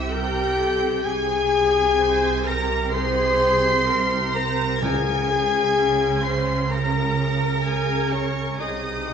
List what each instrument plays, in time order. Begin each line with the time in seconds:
Already playing: double bass section C2, cello section C3, french horn section E4, viola section G4, violin section E5 E6
0.10 clarinet G4, french horn section G4, viola section A#4, violin section G5 G6, oboe G5, flute G5
0.58 viola section A4
1.04 double bass section C2, cello section C3, clarinet G#4, viola section G#4, french horn section G#4, violin section G#5 G#6, flute G#5, oboe G#5
2.00 viola section C5
2.45 clarinet A#4, viola section A#4, french horn section A#4, violin section A#5 A#6, oboe A#5, flute A#5
2.93 viola section G#4, french horn section C5, clarinet C5, violin section C6 C7, oboe C6, flute C6
3.88 viola section A#4
4.34 clarinet A#4, french horn section A#4, viola section C5, violin section A#5 A#6, flute A#5, oboe A#5
4.82 double bass section C#2, cello section C#3, timpani C#3, clarinet G#4, french horn section G#4, viola section A#4, violin section G#5 G#6, oboe G#5, flute G#5
5.29 viola section G#4
5.76 viola section C#4
6.23 clarinet C5, french horn section C5, violin section C6 C7, oboe C6, flute C6
6.70 clarinet A#4, viola section A#4, french horn section A#4, violin section A#5 A#6, flute A#5, oboe A#5
7.64 clarinet G#4, french horn section G#4, flute G#5, violin section G#5 G#6, oboe G#5
8.12 clarinet C#4, french horn section C#4, violin section C#5 C#6, oboe C#5, flute C#5
8.59 double bass section C2, cello section C3, clarinet D#4, french horn section D#4, viola section G#4, violin section D#5 D#6, flute D#5, oboe D#5
9.09 viola section C5